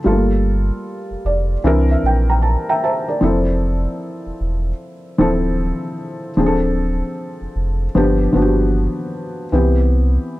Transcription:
0.04 0.71 G1 loud
0.04 1.52 G3 medium
0.04 0.14 A3 medium
0.04 1.53 F4 medium
0.04 1.54 A4 medium
0.12 1.56 A#3 medium
1.11 1.16 F1 soft
1.25 1.57 F1 loud
1.25 1.62 D5 medium
1.64 1.96 C2 loud
1.64 2.01 E3 loud
1.64 2.01 C4 medium
1.64 2.02 D4 medium
1.64 2.02 A#4 loud
1.64 1.88 E5 medium
1.91 2.04 E5 medium
2.03 2.56 A#1 medium
2.03 2.29 G5 medium
2.30 2.43 G5 soft
2.30 2.43 A#5 medium
2.42 2.66 A5 medium
2.69 2.82 E5 medium
2.69 2.83 G5 medium
2.69 2.82 A#5 medium
2.84 3.07 C5 medium
2.84 3.07 E5 medium
2.84 3.20 A5 medium
3.08 3.46 A#4 soft
3.08 3.45 D5 medium
3.21 3.87 F1 loud
3.21 4.69 F3 medium
3.21 4.69 C4 medium
3.21 4.70 E4 medium
3.21 4.70 A4 medium
4.26 4.32 E1 medium
4.41 4.73 E1 medium
5.18 5.72 D1 loud
5.18 6.29 F3 medium
5.18 6.30 C4 medium
5.18 6.30 E4 medium
5.18 6.31 A4 medium
6.37 7.03 D1 loud
6.37 7.85 F3 medium
6.37 7.85 C4 medium
6.37 7.85 D4 medium
6.37 6.47 G#4 medium
6.46 7.89 A4 medium
7.41 7.47 F1 soft
7.56 7.88 F1 medium
7.95 8.28 G1 loud
7.95 8.31 F3 medium
7.95 8.32 B3 medium
7.95 8.33 D4 medium
7.95 8.33 G4 medium
8.33 8.88 G1 medium
8.33 9.44 F3 medium
8.33 9.45 B3 medium
8.33 9.45 D4 medium
8.33 8.44 F#4 medium
8.42 9.49 G4 medium
9.52 10.18 C2 medium
9.52 10.40 E3 medium
9.52 10.40 B3 medium
9.52 10.40 C4 medium
9.52 10.40 G4 medium

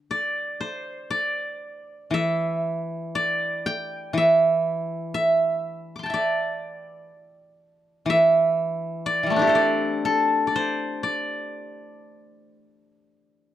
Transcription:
0.11 1.10 D5 medium
0.60 2.59 C5 medium
1.10 2.95 D5 medium
2.11 4.12 E3 medium
2.11 3.86 E5 medium
3.15 5.00 D5 medium
3.66 5.21 G5 medium
4.13 7.09 E3 medium
4.18 5.14 E5 medium
5.14 6.09 E5 medium
5.96 7.30 C6 soft
5.96 7.18 D6 soft
6.03 7.61 G5 soft
6.03 7.48 A5 soft
6.10 7.98 D5 medium
6.10 7.82 E5 soft
8.06 9.22 E3 medium
8.10 9.82 E5 loud
9.06 9.55 D5 medium
9.23 9.42 E3 soft
9.23 9.53 G3 soft
9.30 12.63 A3 soft
9.30 12.32 C4 soft
9.36 12.16 D4 medium
9.36 12.00 E4 medium
9.42 11.77 G4 medium
9.47 10.05 A4 medium
9.47 10.55 C5 medium
9.55 10.47 D5 medium
10.05 12.24 A4 medium
10.47 11.03 D5 medium
10.56 12.54 C5 medium
11.03 12.90 D5 medium
12.90 13.34 C#5 medium
13.34 13.55 C5 medium

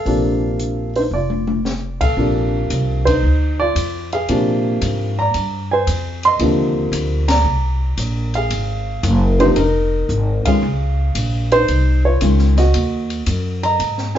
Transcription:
0.00 0.92 A4 medium
0.00 0.99 F5 medium
0.05 1.07 A#1 medium
0.05 0.88 C3 medium
0.05 0.88 F3 medium
0.05 0.89 A#3 medium
0.05 0.89 D4 medium
0.05 open hi-hat soft
0.60 closed hi-hat medium
0.96 1.03 D#4 medium
0.96 1.01 C5 medium
0.96 open hi-hat soft
1.11 1.97 F1 medium
1.11 1.98 D5 medium
1.16 1.99 F4 medium
1.30 high tom soft
1.47 high tom medium
1.65 snare medium
2.01 2.16 B1 medium
2.01 3.04 A4 medium
2.01 3.10 F5 medium
2.01 kick medium
2.01 ride medium
2.17 2.68 A#1 medium
2.17 2.99 C3 medium
2.17 2.99 F3 medium
2.17 3.00 A#3 medium
2.17 3.00 D4 medium
2.70 3.21 C2 medium
2.70 hi-hat pedal medium
2.70 ride medium
3.05 3.56 D#4 medium
3.05 3.55 C5 medium
3.05 kick medium
3.05 ride medium
3.23 3.74 D2 medium
3.60 4.10 F4 medium
3.60 4.09 D5 loud
3.75 4.27 F2 medium
3.75 hi-hat pedal medium
3.75 ride medium
4.12 5.15 G#4 medium
4.12 5.14 F5 medium
4.12 ride soft
4.29 4.80 A#2 medium
4.29 5.11 C3 medium
4.29 5.11 F3 medium
4.29 5.11 A#3 medium
4.29 5.11 D4 medium
4.29 ride medium
4.81 5.33 G#2 medium
4.81 hi-hat pedal medium
4.81 ride medium
5.19 5.69 D5 medium
5.19 5.67 A#5 medium
5.34 5.85 G2 medium
5.34 ride medium
5.71 6.21 C5 medium
5.71 6.20 G#5 medium
5.87 6.38 F2 medium
5.87 hi-hat pedal medium
5.87 ride medium
6.23 7.33 C6 loud
6.23 ride soft
6.27 7.27 D#5 medium
6.39 6.91 D#2 medium
6.39 7.22 C3 medium
6.39 7.23 D3 medium
6.39 7.22 F3 medium
6.39 7.22 A#3 medium
6.39 ride medium
6.92 7.43 D2 medium
6.92 hi-hat pedal medium
6.92 ride medium
7.28 8.31 D5 medium
7.28 8.30 A#5 loud
7.28 snare medium
7.28 ride medium
7.44 7.96 C2 medium
7.98 8.49 A#1 medium
7.98 hi-hat pedal medium
7.98 ride medium
8.34 9.38 G#4 medium
8.34 9.44 F5 medium
8.34 ride soft
8.50 9.02 G#1 medium
8.50 ride medium
9.03 9.55 F#1 medium
9.03 hi-hat pedal medium
9.03 ride medium
9.39 9.54 C3 medium
9.39 9.55 F3 medium
9.39 9.55 A#3 medium
9.39 9.55 D#4 medium
9.39 9.45 C5 medium
9.39 ride soft
9.56 10.08 F1 medium
9.56 10.43 D#4 medium
9.56 10.49 A#4 medium
9.56 ride medium
10.09 10.43 G#1 medium
10.09 hi-hat pedal soft
10.45 10.61 D#3 medium
10.45 10.61 G#3 medium
10.45 10.61 C#4 medium
10.45 10.61 F4 medium
10.45 11.49 G#4 medium
10.45 11.55 F5 medium
10.45 muted upright bass stroke soft
10.45 kick medium
10.45 ride medium
10.63 11.14 C#2 medium
11.15 11.66 A#1 medium
11.15 hi-hat pedal soft
11.15 ride medium
11.52 12.02 D#4 medium
11.52 12.01 C5 loud
11.52 ride soft
11.68 12.20 C2 medium
11.68 ride medium
12.05 12.21 F4 medium
12.05 12.54 C#5 medium
12.21 12.72 C#2 medium
12.21 12.54 D#3 medium
12.21 12.54 G#3 medium
12.21 12.54 C#4 medium
12.21 12.55 F4 medium
12.21 hi-hat pedal medium
12.21 ride medium
12.39 snare soft
12.57 13.60 F#4 medium
12.57 13.59 D#5 medium
12.57 snare soft
12.57 ride soft
12.74 13.26 D#2 medium
12.74 ride medium
13.10 ride soft
13.26 13.78 F#2 medium
13.26 hi-hat pedal medium
13.26 ride medium
13.63 14.13 D#5 medium
13.63 14.12 A#5 loud
13.63 ride soft
13.79 14.18 G#2 medium
13.79 ride medium
13.98 snare soft
14.15 14.18 G#5 medium
14.15 snare soft

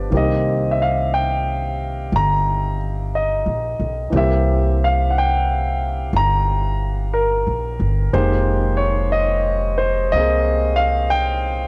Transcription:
0.00 0.11 F3 soft
0.00 0.11 B3 soft
0.00 0.11 D4 soft
0.00 0.11 G4 medium
0.00 0.10 D5 medium
0.10 2.08 C2 medium
0.10 4.12 D#3 soft
0.10 4.10 A#3 soft
0.10 4.12 C4 soft
0.15 4.14 G4 soft
0.15 0.67 D#5 medium
0.71 0.79 E5 medium
0.82 1.11 F5 medium
1.14 2.16 G5 medium
2.12 3.42 G1 medium
2.12 2.76 A#5 medium
3.15 4.17 D#5 medium
3.46 3.77 A#1 medium
3.80 4.10 B1 medium
4.10 6.09 C2 medium
4.10 8.12 E3 soft
4.10 8.12 A#3 soft
4.10 8.14 C4 soft
4.16 8.13 G4 soft
4.16 4.83 E5 medium
4.84 5.09 F5 medium
5.10 5.14 F#5 medium
5.18 6.12 G5 medium
6.13 7.42 G1 medium
6.13 6.77 A#5 medium
7.14 8.10 A#4 medium
7.47 7.78 A#1 soft
7.80 8.11 G1 medium
8.13 10.10 F1 medium
8.13 11.68 D#3 soft
8.13 11.68 G#3 soft
8.13 10.13 A#3 soft
8.13 11.68 G4 medium
8.13 8.82 C5 medium
8.77 9.10 C#5 medium
9.12 9.81 D#5 medium
9.78 10.14 C5 medium
10.12 11.68 C2 medium
10.12 11.68 A#3 soft
10.12 11.68 C4 soft
10.12 10.75 D#5 medium
10.18 11.68 G#4 soft
10.76 11.13 F5 medium
11.10 11.68 G5 medium

